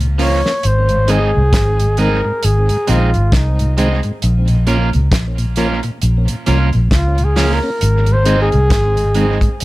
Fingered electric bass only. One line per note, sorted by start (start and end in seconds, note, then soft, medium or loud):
0.00 0.41 C#2 medium
0.65 1.31 G#1 loud
1.37 1.53 C2 medium
1.53 2.21 G#1 medium
2.44 2.68 G#1 medium
2.89 3.13 A#1 medium
3.16 3.32 G#1 medium
3.33 4.00 C2 medium
4.24 4.90 A#1 loud
4.95 5.12 C#2 medium
5.12 5.80 A#1 loud
6.03 6.27 A#1 loud
6.48 6.72 C2 loud
6.75 6.91 A#1 medium
6.92 7.59 C#2 medium
7.82 8.49 G#1 loud
8.54 8.70 C2 loud
8.71 9.38 G#1 loud